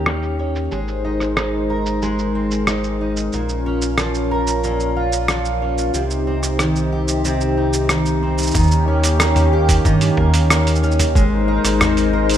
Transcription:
0.00 0.69 D#2 medium
0.00 0.69 D#3 medium
0.00 0.71 D#3 medium
0.00 0.69 A#3 medium
0.00 0.69 C#4 medium
0.00 0.69 G4 medium
0.00 0.78 G4 medium
0.00 1.69 A#4 medium
0.06 0.38 C#4 medium
0.06 cross-stick medium
0.06 shaker soft
0.23 shaker soft
0.39 0.78 C#4 medium
0.55 shaker soft
0.71 3.30 G#1 medium
0.71 2.01 G#3 medium
0.71 3.30 G#3 medium
0.71 3.30 D#4 medium
0.71 5.90 A#4 medium
0.71 3.30 C5 medium
0.71 shaker soft
0.88 shaker soft
1.05 1.36 D#4 medium
1.20 cross-stick soft
1.20 shaker medium
1.37 2.67 D#4 medium
1.37 cross-stick medium
1.37 shaker soft
1.70 4.31 A#4 medium
1.86 shaker medium
2.02 3.39 G#3 medium
2.02 shaker soft
2.19 shaker soft
2.35 3.39 C4 medium
2.51 shaker medium
2.67 3.00 D#4 medium
2.67 cross-stick medium
2.67 shaker medium
2.84 shaker soft
3.01 3.40 D#4 medium
3.17 shaker medium
3.32 5.91 A#1 medium
3.32 4.63 A#2 medium
3.32 5.91 C#4 medium
3.32 5.91 F4 medium
3.32 shaker soft
3.49 shaker soft
3.66 5.61 C#4 medium
3.82 shaker medium
3.98 5.28 F3 medium
3.98 cross-stick medium
3.98 shaker medium
4.14 shaker soft
4.31 6.01 A#4 medium
4.47 shaker medium
4.64 5.94 A#2 medium
4.64 shaker soft
4.80 shaker soft
4.97 6.01 F4 medium
5.12 shaker medium
5.28 6.01 F3 medium
5.28 cross-stick medium
5.28 shaker medium
5.45 shaker soft
5.62 6.01 C#4 medium
5.78 shaker medium
5.94 8.51 C2 medium
5.94 8.52 C3 medium
5.94 7.24 C3 medium
5.94 8.52 C4 medium
5.94 8.52 D#4 medium
5.94 8.52 G4 medium
5.94 shaker soft
6.10 shaker soft
6.27 8.21 C4 medium
6.43 cross-stick soft
6.43 shaker medium
6.59 7.89 D#3 medium
6.59 cross-stick medium
6.59 shaker medium
6.76 shaker soft
6.92 8.91 G4 medium
7.08 shaker medium
7.25 8.61 C3 medium
7.25 shaker soft
7.41 shaker soft
7.57 8.87 D#4 medium
7.73 shaker medium
7.89 8.55 D#3 medium
7.89 cross-stick medium
7.89 shaker medium
8.06 shaker soft
8.23 8.61 C4 medium
8.38 shaker medium
8.42 shaker soft
8.47 shaker soft
8.51 mid tom medium
8.51 shaker soft
8.55 9.80 D#2 medium
8.55 9.85 D#3 medium
8.55 11.13 D#3 medium
8.55 11.13 A#3 medium
8.55 11.13 C#4 medium
8.55 11.13 G4 medium
8.55 kick loud
8.55 shaker medium
8.63 shaker soft
8.67 shaker soft
8.71 shaker soft
8.88 10.82 C#4 medium
9.04 open hi-hat medium
9.04 shaker medium
9.20 10.17 A#3 medium
9.20 cross-stick loud
9.20 shaker medium
9.36 mid tom medium
9.36 open hi-hat soft
9.36 shaker soft
9.53 11.22 G4 medium
9.69 kick loud
9.69 open hi-hat medium
9.69 shaker medium
9.85 10.11 G2 medium
9.85 11.15 D#3 medium
9.85 kick loud
9.85 shaker medium
10.01 open hi-hat soft
10.01 shaker soft
10.17 11.17 D#2 medium
10.17 10.50 A#3 medium
10.17 kick medium
10.17 mid tom medium
10.34 open hi-hat medium
10.34 shaker medium
10.50 11.80 A#3 medium
10.50 cross-stick loud
10.50 shaker medium
10.67 open hi-hat soft
10.67 shaker soft
10.75 shaker soft
10.83 11.22 C#4 medium
10.83 shaker soft
10.91 shaker soft
10.99 mid tom medium
10.99 open hi-hat medium
10.99 shaker medium
11.15 11.59 G#1 medium
11.15 12.38 G#3 medium
11.15 12.38 D#4 medium
11.15 12.38 A#4 medium
11.15 12.38 C5 medium
11.15 kick loud
11.15 shaker soft
11.48 12.38 D#4 medium
11.64 12.38 G#1 medium
11.64 cross-stick soft
11.64 open hi-hat medium
11.64 shaker medium
11.80 12.38 C4 medium
11.80 cross-stick loud
11.80 mid tom medium
11.80 shaker medium
11.97 open hi-hat soft
11.97 shaker soft
12.13 12.38 A#4 medium
12.29 open hi-hat medium
12.29 shaker soft
12.33 shaker soft

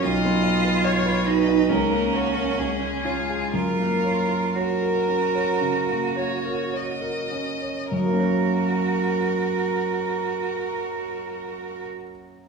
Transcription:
0.02 1.66 B1 soft
0.02 1.28 F4 medium
0.02 0.86 D#5 medium
0.25 0.57 B3 soft
0.44 0.76 D#5 soft
0.64 0.97 B4 soft
0.84 1.29 C#5 medium
0.84 1.18 D#5 soft
1.06 1.39 B4 soft
1.26 1.71 D#4 medium
1.26 1.60 F#4 soft
1.26 1.70 B4 medium
1.48 1.70 D#5 soft
1.69 2.55 C#2 soft
1.69 3.06 C#4 medium
1.69 2.16 A#4 soft
1.91 2.27 A#3 soft
2.13 2.61 F#4 soft
2.13 2.49 C#5 soft
2.35 2.58 A#4 soft
2.58 3.51 C#2 soft
2.58 3.54 G#4 soft
2.81 3.19 G#3 soft
3.05 3.52 F4 medium
3.05 3.44 C#5 soft
3.30 3.54 G#4 soft
3.53 5.58 F#2 soft
3.53 4.57 F4 medium
3.53 4.44 A#4 soft
3.80 4.20 A#3 soft
4.04 4.45 C#5 soft
4.30 4.71 A#4 soft
4.56 7.33 F#4 soft
4.56 6.14 A#4 soft
4.56 4.97 C#5 soft
4.83 5.25 A#4 soft
5.08 5.51 C#4 soft
5.35 5.79 C#5 soft
5.61 6.06 C#3 soft
5.89 6.34 A#3 soft
6.17 6.62 C#5 soft
6.17 6.77 C#5 soft
6.45 6.91 A#4 soft
6.73 7.20 C#5 soft
6.73 7.92 D#5 soft
7.02 7.50 A#4 soft
7.32 7.80 C#4 soft
7.62 7.92 C#5 soft
7.92 11.81 F#2 soft
7.92 11.83 F#4 soft
7.92 11.83 A#4 soft
7.98 11.88 F#3 soft
8.06 11.96 A#3 soft
8.13 12.03 C#4 soft
8.20 12.10 C#5 soft

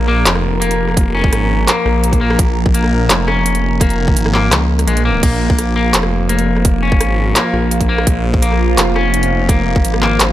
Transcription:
0.00 0.25 A#1 loud
0.00 10.32 F3 medium
0.00 10.32 A#3 medium
0.00 5.19 A#4 medium
0.00 5.21 A#5 medium
0.08 0.25 A#3 loud
0.26 1.31 F1 loud
0.26 clap loud
0.26 closed hi-hat medium
0.35 cross-stick medium
0.61 1.13 A#3 medium
0.61 closed hi-hat medium
0.71 closed hi-hat soft
0.89 cross-stick soft
0.91 cross-stick soft
0.94 kick loud
0.94 cross-stick soft
0.94 closed hi-hat medium
1.03 cross-stick soft
1.15 1.66 C#4 medium
1.24 kick loud
1.32 1.66 G#1 medium
1.32 cross-stick medium
1.32 closed hi-hat medium
1.68 2.19 A#3 medium
1.68 clap loud
1.68 closed hi-hat medium
1.86 2.37 A#1 loud
1.86 cross-stick medium
2.04 closed hi-hat medium
2.13 kick medium
2.13 closed hi-hat soft
2.21 2.38 A#3 loud
2.30 cross-stick medium
2.39 3.08 A#1 loud
2.39 kick loud
2.39 closed hi-hat medium
2.66 kick loud
2.74 3.26 A#3 medium
2.74 closed hi-hat medium
2.84 cross-stick medium
3.10 4.15 F1 loud
3.10 clap loud
3.10 closed hi-hat medium
3.28 3.79 C#4 medium
3.28 cross-stick medium
3.46 closed hi-hat medium
3.55 closed hi-hat soft
3.81 4.32 A#3 medium
3.81 kick loud
3.81 cross-stick medium
3.81 closed hi-hat medium
3.90 closed hi-hat soft
4.08 kick loud
4.16 4.50 G#1 loud
4.16 closed hi-hat medium
4.26 cross-stick medium
4.34 4.51 A#3 loud
4.34 clap medium
4.52 4.86 C#2 loud
4.52 clap loud
4.52 closed hi-hat medium
4.79 cross-stick medium
4.79 closed hi-hat soft
4.87 5.21 A#1 loud
4.87 5.04 G#3 medium
4.87 closed hi-hat medium
4.97 closed hi-hat soft
5.05 5.21 A#3 loud
5.23 5.93 A#1 loud
5.23 5.74 A#3 medium
5.23 10.32 F4 medium
5.23 10.32 C5 medium
5.23 10.32 F5 medium
5.23 kick loud
5.23 closed hi-hat medium
5.23 crash medium
5.50 kick loud
5.59 cross-stick medium
5.59 closed hi-hat medium
5.76 5.93 A#3 loud
5.94 6.99 F1 loud
5.94 clap loud
5.94 closed hi-hat medium
6.03 cross-stick medium
6.29 6.81 A#3 medium
6.29 closed hi-hat medium
6.39 closed hi-hat soft
6.56 cross-stick medium
6.65 kick loud
6.65 closed hi-hat medium
6.83 7.34 C#4 medium
6.92 kick loud
7.00 7.34 G#1 medium
7.00 cross-stick medium
7.00 closed hi-hat medium
7.36 7.87 A#3 medium
7.36 clap loud
7.36 closed hi-hat medium
7.54 8.05 A#1 loud
7.54 cross-stick medium
7.71 closed hi-hat medium
7.81 kick medium
7.81 closed hi-hat soft
7.89 8.06 A#3 loud
7.98 cross-stick medium
8.07 8.77 A#1 loud
8.07 kick loud
8.07 closed hi-hat medium
8.34 kick loud
8.42 8.94 A#3 medium
8.42 closed hi-hat medium
8.52 cross-stick medium
8.78 9.83 F1 loud
8.78 clap loud
8.78 closed hi-hat medium
8.96 9.47 C#4 medium
8.96 cross-stick medium
9.14 closed hi-hat medium
9.23 closed hi-hat soft
9.49 10.00 A#3 medium
9.49 kick loud
9.49 cross-stick medium
9.49 closed hi-hat medium
9.76 kick loud
9.85 10.19 G#1 loud
9.85 closed hi-hat medium
9.94 cross-stick medium
10.02 10.19 A#3 loud
10.02 clap medium
10.20 10.32 G#1 loud
10.20 clap loud
10.20 closed hi-hat medium

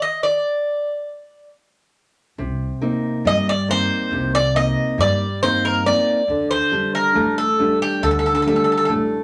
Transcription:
0.02 0.21 D#5 medium
0.23 1.49 D5 medium
2.38 2.69 C2 medium
2.38 3.23 C3 medium
2.82 3.51 A#3 soft
2.82 3.51 C4 soft
2.82 3.51 D#4 medium
3.25 3.86 G2 medium
3.25 4.09 G3 medium
3.25 3.46 D#5 medium
3.49 3.70 D5 medium
3.68 4.38 A#3 soft
3.68 4.38 C4 soft
3.68 4.38 D#4 medium
3.68 4.34 C5 loud
4.11 4.72 C2 medium
4.11 4.96 C3 medium
4.35 4.54 D5 medium
4.55 5.24 A#3 soft
4.55 5.25 C4 soft
4.55 5.25 D#4 medium
4.55 5.00 D#5 medium
4.98 5.89 G2 loud
4.98 5.83 G3 medium
4.98 5.40 D5 loud
5.42 5.85 A#3 soft
5.42 5.85 C4 soft
5.42 5.85 D#4 medium
5.42 5.65 C5 medium
5.65 5.85 A#4 medium
5.86 6.21 A#3 medium
5.86 6.21 C4 soft
5.86 6.21 D#4 medium
5.86 6.50 D5 medium
6.28 6.59 D2 medium
6.28 7.13 D3 medium
6.51 6.91 C5 medium
6.72 7.41 G3 medium
6.72 7.42 D4 medium
6.95 7.35 A#4 medium
7.15 7.76 A1 medium
7.15 7.58 A3 medium
7.38 7.78 A4 medium
7.59 8.29 G3 soft
7.59 8.29 A3 soft
7.59 8.29 D4 medium
7.82 8.04 G4 medium
8.02 8.63 D2 medium
8.02 8.87 D3 medium
8.02 8.10 A4 medium
8.11 8.18 A4 soft
8.19 8.25 A4 medium
8.26 8.33 A4 soft
8.35 8.41 A4 medium
8.42 8.46 A4 soft
8.46 9.16 G3 medium
8.46 8.88 A3 soft
8.46 9.16 D4 medium
8.46 8.55 A4 soft
8.56 8.63 A4 soft
8.64 8.70 A4 soft
8.72 8.76 A4 soft
8.77 8.84 A4 medium
8.85 9.24 A1 loud
8.85 8.92 A4 soft
8.89 9.24 A3 medium

